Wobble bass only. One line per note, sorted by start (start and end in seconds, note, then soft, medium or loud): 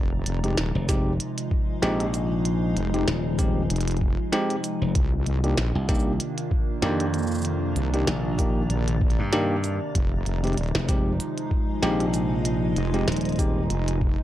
0.00 0.24 F1 loud
0.26 0.55 F1 loud
0.57 0.72 D#1 loud
2.76 3.05 F1 loud
3.70 4.16 F1 loud
4.95 5.24 C2 medium
5.26 5.55 C2 medium
5.58 5.72 A#1 loud
7.76 8.05 C2 loud
8.70 9.16 A#1 loud
9.95 10.24 F1 loud
10.26 10.55 F1 loud
10.57 10.72 D#1 loud
12.76 13.05 F1 loud
13.70 14.16 F1 loud